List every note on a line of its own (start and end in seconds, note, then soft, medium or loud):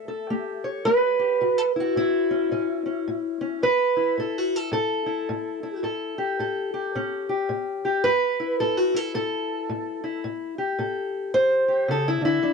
0.00 0.25 A3 medium
0.00 0.62 E5 loud
0.08 0.85 A4 soft
0.30 0.81 A3 medium
0.30 1.19 G4 soft
0.64 1.41 C#5 soft
0.85 1.37 A3 medium
0.85 1.74 B4 loud
1.19 1.44 G4 soft
1.41 1.92 A2 medium
1.41 1.58 F#4 soft
1.58 1.60 A4 soft
1.76 1.96 E4 soft
1.80 3.08 F#4 medium
1.96 2.47 A2 medium
1.96 3.63 E4 medium
2.31 2.50 C#4 soft
2.51 3.02 A2 medium
2.51 2.85 C#4 soft
2.86 3.40 C#4 soft
3.08 3.58 A2 medium
3.41 3.60 C#4 soft
3.63 4.13 A2 medium
3.63 4.18 B4 loud
3.97 5.06 E4 soft
4.18 4.68 A2 medium
4.18 4.38 A4 medium
4.38 4.56 F#4 medium
4.56 4.72 A4 medium
4.72 5.23 A2 medium
4.72 5.82 A4 loud
5.06 5.63 E4 soft
5.29 5.79 A2 medium
5.63 6.18 E4 soft
5.83 6.34 A2 medium
5.83 6.40 A4 medium
6.18 6.73 G4 medium
6.39 6.90 A2 medium
6.39 7.29 A4 medium
6.74 7.29 G4 medium
6.95 7.45 A2 medium
6.95 8.07 C#4 medium
7.29 7.85 G4 medium
7.49 8.00 A2 medium
7.85 8.09 G4 medium
8.04 8.56 A2 medium
8.04 8.59 B4 loud
8.40 8.94 E4 medium
8.60 9.10 A2 medium
8.60 8.77 A4 medium
8.77 8.96 F#4 medium
8.94 10.03 E4 soft
8.94 9.13 A4 medium
9.14 9.65 A2 medium
9.14 10.24 A4 loud
9.69 10.20 A2 medium
10.04 10.58 E4 soft
10.24 10.75 A2 medium
10.58 11.67 G4 soft
10.79 11.29 A2 medium
10.79 11.34 A4 soft
11.34 11.85 A2 medium
11.34 11.89 C5 loud
11.68 12.08 G4 soft
11.88 12.21 C#3 medium
11.88 12.08 A4 medium
12.08 12.24 E4 medium
12.21 12.42 D3 medium
12.21 12.53 E4 medium
12.43 12.53 E3 medium
12.43 12.53 D4 soft